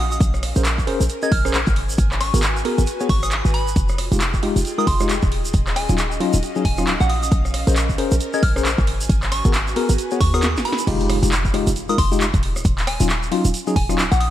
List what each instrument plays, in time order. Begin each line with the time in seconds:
Already playing: 808-style bass A#1, analog synth pad C#4 D#5 F5
0.10 analog synth pad A#4, synth bell D#6, shaker
0.20 808-style bass A#1, kick, closed hi-hat, shaker
0.27 analog synth pad G#5
0.34 cross-stick, shaker
0.43 cross-stick, open hi-hat
0.56 808-style bass A#1, tine electric piano C#4 G#4 A#4 C5, closed hi-hat, shaker
0.65 clap, closed hi-hat, shaker
0.74 analog synth pad C5, kick
0.79 shaker
0.87 tine electric piano C#4 G#4 A#4 C5, open hi-hat
1.00 808-style bass A#1, closed hi-hat, shaker
1.09 closed hi-hat, shaker
1.22 tine electric piano C#4 G#4 A#4 D#5, synth bell G#6, shaker
1.32 808-style bass A#1, synth bell F6, kick, open hi-hat
1.45 tine electric piano C#4 G#4 A#4 C5, cross-stick, shaker
1.54 clap, closed hi-hat, shaker
1.67 808-style bass G#1, kick, shaker
1.76 analog synth pad F#4, open hi-hat
1.86 analog synth pad B4, shaker
1.98 808-style bass G#1, kick, closed hi-hat, shaker
2.12 cross-stick, clap, shaker
2.21 synth bell C#6, cross-stick, open hi-hat
2.34 808-style bass G#1, tine electric piano B3 F#4 G#4 A#4, closed hi-hat, shaker
2.42 clap, closed hi-hat, shaker
2.57 shaker
2.65 tine electric piano B3 F#4 G#4 A#4, open hi-hat
2.78 808-style bass G#1, closed hi-hat, shaker
2.87 closed hi-hat, shaker
3.00 tine electric piano B3 F#4 G#4 C#5, shaker
3.09 808-style bass G#1, synth bell C#6, kick, open hi-hat
3.23 synth bell D#6, cross-stick, shaker
3.31 clap, closed hi-hat, shaker
3.45 808-style bass G#1, shaker
3.54 synth bell B5, open hi-hat
3.68 shaker
3.76 808-style bass F1, analog synth pad F4, kick, closed hi-hat, shaker
3.88 analog synth pad G#4, cross-stick, shaker
3.98 analog synth pad G5, cross-stick, open hi-hat
4.12 808-style bass F1, tine electric piano G#3 D#4 F4 G4, closed hi-hat, shaker
4.20 clap, closed hi-hat, shaker
4.29 analog synth pad D#5
4.34 kick, shaker
4.43 tine electric piano G#3 D#4 F4 G4, open hi-hat
4.56 808-style bass F1, closed hi-hat, shaker
4.65 closed hi-hat, shaker
4.78 tine electric piano G#3 D#4 F4 A#4, synth bell D#6, shaker
4.87 808-style bass F1, synth bell C6, kick, open hi-hat
5.00 tine electric piano G#3 D#4 F4 G4, cross-stick, shaker
5.09 clap, closed hi-hat, shaker
5.22 808-style bass D#1, kick, shaker
5.32 analog synth pad C#4, open hi-hat
5.45 shaker
5.54 808-style bass D#1, kick, closed hi-hat, shaker
5.67 cross-stick, clap, shaker
5.76 synth bell G#5, cross-stick, open hi-hat
5.80 analog synth pad F#4
5.89 808-style bass D#1, tine electric piano F#3 C#4 D#4 F4, closed hi-hat, shaker
5.98 clap, closed hi-hat, shaker
6.12 analog synth pad F5, shaker
6.20 tine electric piano F#3 C#4 D#4 F4, open hi-hat
6.33 808-style bass D#1, closed hi-hat, shaker
6.43 closed hi-hat, shaker
6.56 tine electric piano F#3 C#4 D#4 G#4, shaker
6.65 808-style bass D#1, synth bell G#5, kick, open hi-hat
6.77 tine electric piano F#3 C#4 D#4 F4, cross-stick, shaker
6.87 clap, closed hi-hat, shaker
7.00 808-style bass A#1, synth bell F#5, shaker
7.09 synth bell D#6, open hi-hat
7.23 synth bell D#6, shaker
7.31 808-style bass A#1, analog synth pad A#4, kick, closed hi-hat, shaker
7.45 cross-stick, shaker
7.54 cross-stick, open hi-hat
7.67 808-style bass A#1, tine electric piano C#4 G#4 A#4 C5, closed hi-hat, shaker
7.76 clap, closed hi-hat, shaker
7.89 analog synth pad C5 G#5, kick, shaker
7.98 tine electric piano C#4 G#4 A#4 C5, open hi-hat
8.11 808-style bass A#1, closed hi-hat, shaker
8.21 closed hi-hat, shaker
8.33 tine electric piano C#4 G#4 A#4 D#5, synth bell G#6, shaker
8.43 808-style bass A#1, synth bell F6, kick, open hi-hat
8.56 tine electric piano C#4 G#4 A#4 C5, cross-stick, shaker
8.65 clap, closed hi-hat, shaker
8.78 808-style bass G#1, kick, shaker
8.87 analog synth pad F#4, open hi-hat
9.01 shaker
9.09 808-style bass G#1, kick, closed hi-hat, shaker
9.22 cross-stick, clap, shaker
9.31 analog synth pad B4, synth bell C#6, cross-stick, open hi-hat
9.45 808-style bass G#1, tine electric piano B3 F#4 G#4 A#4, kick, closed hi-hat, shaker
9.54 clap, closed hi-hat, shaker
9.67 shaker
9.76 tine electric piano B3 F#4 G#4 A#4, open hi-hat
9.89 808-style bass G#1, closed hi-hat, shaker
9.98 closed hi-hat, shaker
10.11 tine electric piano B3 F#4 G#4 C#5, shaker
10.20 808-style bass D#2, synth bell C#6, kick, open hi-hat
10.34 tine electric piano B3 F#4 G#4 A#4, synth bell D#6, cross-stick, shaker
10.42 snare, clap, closed hi-hat, shaker
10.56 808-style bass G#1, snare, shaker
10.65 synth bell B5, open hi-hat
10.72 snare
10.78 closed hi-hat, shaker
10.87 808-style bass F1, tine electric piano G#3 D#4 F4 G4, kick, closed hi-hat, crash, impact, shaker
11.00 closed hi-hat, shaker
11.10 cross-stick, open hi-hat
11.23 808-style bass F1, tine electric piano G#3 D#4 F4 G4, closed hi-hat, shaker
11.32 clap, shaker
11.45 kick, shaker
11.54 tine electric piano G#3 D#4 F4 G4, cross-stick, open hi-hat
11.67 808-style bass F1, closed hi-hat, shaker
11.76 closed hi-hat, shaker
11.89 tine electric piano G#3 D#4 F4 A#4, synth bell D#6, shaker
11.98 808-style bass F1, synth bell C6, kick, open hi-hat
12.12 tine electric piano G#3 D#4 F4 G4, shaker
12.21 clap, shaker
12.34 808-style bass D#1, kick, closed hi-hat, shaker
12.43 open hi-hat
12.56 cross-stick, shaker
12.65 808-style bass D#1, kick, closed hi-hat, shaker
12.78 clap, closed hi-hat, shaker
12.87 synth bell G#5, cross-stick, open hi-hat
13.00 808-style bass D#1, tine electric piano F#3 C#4 D#4 F4, closed hi-hat, shaker
13.09 clap, shaker
13.23 shaker
13.32 tine electric piano F#3 C#4 D#4 F4, open hi-hat
13.45 808-style bass D#1, closed hi-hat, shaker
13.54 closed hi-hat, shaker
13.67 tine electric piano F#3 C#4 D#4 G#4, shaker
13.76 808-style bass D#1, synth bell G#5, kick, open hi-hat
13.89 tine electric piano F#3 C#4 D#4 F4, cross-stick, shaker
13.98 clap, shaker
14.11 808-style bass A#1, synth bell F#5, closed hi-hat, shaker
14.20 synth bell D#6, open hi-hat